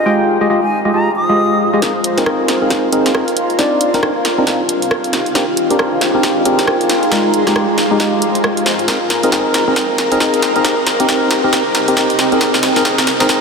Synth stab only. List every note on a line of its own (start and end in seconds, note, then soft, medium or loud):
0.06 0.38 G#3 medium
0.06 0.38 F4 medium
0.06 0.38 G4 medium
0.06 0.38 G#4 medium
0.06 0.38 G5 loud
0.41 0.48 G#3 loud
0.41 0.48 F4 medium
0.41 0.48 G4 medium
0.41 0.48 G#4 medium
0.41 0.48 D#5 loud
0.50 0.60 G#3 medium
0.50 0.60 F4 medium
0.50 0.60 G4 medium
0.50 0.60 G#4 medium
0.50 0.60 D#5 loud
0.85 0.92 G#3 medium
0.85 0.92 F4 medium
0.85 0.92 G4 medium
0.85 0.92 G#4 medium
0.85 0.92 D#5 loud
0.94 1.09 G#3 medium
0.94 1.09 F4 medium
0.94 1.09 G4 medium
0.94 1.09 G#4 medium
0.94 1.09 D#5 medium
1.29 1.70 G#3 medium
1.29 1.70 F4 medium
1.29 1.70 G4 medium
1.29 1.70 G#4 medium
1.29 1.70 D#5 loud
1.73 1.80 G#3 medium
1.73 1.80 F4 medium
1.73 1.80 G4 medium
1.73 1.80 G#4 medium
1.73 1.80 D#5 loud
1.82 1.92 C4 medium
1.82 1.92 D#4 medium
1.82 1.92 A#4 medium
2.18 2.24 C4 medium
2.18 2.24 D#4 medium
2.18 2.24 G#4 medium
2.18 2.24 A#4 loud
2.26 2.59 C4 medium
2.26 2.59 D#4 medium
2.26 2.59 G#4 medium
2.26 2.59 A#4 loud
2.62 2.90 C4 medium
2.62 2.90 D#4 medium
2.62 2.90 G#4 medium
2.62 2.90 A#4 medium
2.92 3.12 C4 loud
2.92 3.12 D#4 loud
2.92 3.12 G#4 medium
2.92 3.12 A#4 loud
3.15 3.24 C4 medium
3.15 3.24 D#4 medium
3.15 3.24 G#4 medium
3.15 3.24 A#4 loud
3.59 3.91 C4 medium
3.59 3.91 D4 medium
3.59 3.91 D#4 medium
3.59 3.91 D5 loud
3.94 4.01 C4 loud
3.94 4.01 D4 medium
3.94 4.01 D#4 medium
3.94 4.01 A#4 loud
4.03 4.13 C4 loud
4.03 4.13 D4 medium
4.03 4.13 D#4 medium
4.38 4.45 C4 loud
4.38 4.45 D4 medium
4.38 4.45 D#4 medium
4.38 4.45 A#4 loud
5.35 5.45 C4 medium
5.35 5.45 D4 medium
5.35 5.45 G4 medium
5.35 5.45 A#4 medium
5.71 5.77 C4 medium
5.71 5.77 D4 medium
5.71 5.77 G4 medium
5.71 5.77 A#4 loud
5.79 6.11 C4 medium
5.79 6.11 D4 medium
5.79 6.11 G4 medium
5.79 6.11 A#4 loud
6.15 6.43 C4 medium
6.15 6.43 D4 medium
6.15 6.43 G4 medium
6.15 6.43 A#4 loud
6.45 6.65 C4 medium
6.45 6.65 D4 medium
6.45 6.65 G4 medium
6.45 6.65 A#4 loud
6.68 6.77 C4 medium
6.68 6.77 D4 medium
6.68 6.77 G4 medium
6.68 6.77 A#4 loud
7.12 7.44 G#3 loud
7.12 7.44 D#4 medium
7.12 7.44 F4 medium
7.12 7.44 A#4 loud
7.47 7.54 G#3 loud
7.47 7.54 D#4 medium
7.47 7.54 F4 medium
7.47 7.54 G4 loud
7.56 7.66 G#3 loud
7.56 7.66 D#4 medium
7.56 7.66 F4 medium
7.56 7.66 G4 loud
7.91 7.98 G#3 loud
7.91 7.98 D#4 medium
7.91 7.98 F4 medium
7.91 7.98 G4 loud
8.00 8.15 F4 medium
8.88 8.98 C4 medium
8.88 8.98 D#4 medium
8.88 8.98 G#4 medium
8.88 8.98 A#4 medium
9.23 9.30 C4 medium
9.23 9.30 D#4 medium
9.23 9.30 G#4 medium
9.23 9.30 A#4 medium
9.32 9.64 C4 medium
9.68 9.75 C4 medium
9.68 9.75 D#4 medium
9.68 9.75 G#4 medium
9.68 9.75 A#4 medium
9.76 9.86 C4 medium
10.12 10.18 C4 medium
10.12 10.18 D#4 medium
10.12 10.18 G#4 medium
10.12 10.18 A#4 loud
10.21 10.53 C4 medium
10.21 10.53 G#4 medium
10.56 10.63 C4 medium
10.56 10.63 D#4 medium
10.56 10.63 G#4 medium
10.56 10.63 A#4 medium
10.65 10.74 D#4 medium
10.65 10.74 G4 medium
10.65 10.74 A#4 medium
11.00 11.07 C4 medium
11.00 11.07 D#4 medium
11.00 11.07 G4 medium
11.00 11.07 A#4 loud
11.09 11.41 C4 medium
11.09 11.41 D#4 medium
11.09 11.41 G4 medium
11.09 11.41 A#4 loud
11.44 11.51 C4 medium
11.44 11.51 D#4 medium
11.44 11.51 G4 medium
11.44 11.51 A#4 medium
11.53 11.63 C4 medium
11.53 11.63 D#4 medium
11.53 11.63 A#4 medium
11.88 11.95 C4 medium
11.88 11.95 D#4 medium
11.88 11.95 G4 medium
11.88 11.95 A#4 loud
11.97 12.29 C4 medium
11.97 12.29 D#4 medium
11.97 12.29 G4 medium
11.97 12.29 A#4 medium
12.32 12.40 C4 medium
12.32 12.40 D#4 medium
12.32 12.40 G#4 medium
12.32 12.40 A#4 loud
12.41 12.51 C4 medium
12.41 12.51 D#4 medium
12.41 12.51 G#4 medium
12.41 12.51 A#4 medium
12.76 12.83 C4 medium
12.76 12.83 D#4 medium
12.76 12.83 G#4 medium
12.76 12.83 A#4 loud
12.85 12.95 C4 medium
12.85 12.95 G#4 medium
13.21 13.27 C4 medium
13.21 13.27 D#4 medium
13.21 13.27 G#4 medium
13.21 13.27 A#4 loud
13.29 13.39 C4 medium
13.29 13.39 D#4 medium
13.29 13.39 G#4 medium